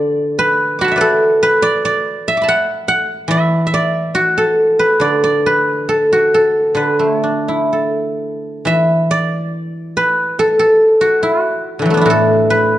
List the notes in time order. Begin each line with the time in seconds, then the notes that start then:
Already playing: D3 B4 D5 E5 F#5
0.39 B4
0.79 F#4 B5 D6
0.84 F#5 A5
0.92 E5
0.96 B4 D5
1.01 A4
1.43 B4
1.62 D5
1.85 D5
2.28 E5
2.37 D6
2.42 A5 B5
2.48 F#5
2.88 F#5
3.28 E3 E5
3.67 E5
3.74 D5
4.15 F#4
4.38 A4
4.79 B4
5.00 D3 D5
5.24 D5
5.46 B4
5.89 A4
6.13 F#4
6.34 A4
6.75 D3 B4
6.99 A3 C5
7.21 D4 D5
7.48 E4
7.73 A4
8.65 E3 E5
9.11 D5
9.97 B4
10.39 A4
10.59 A4
11.01 F#4
11.23 E4
11.41 F#4
11.79 D3 E3
11.86 F#3
11.90 A3 B3
11.97 D4
12.01 E4
12.05 A2 F#4
12.10 A4
12.50 B4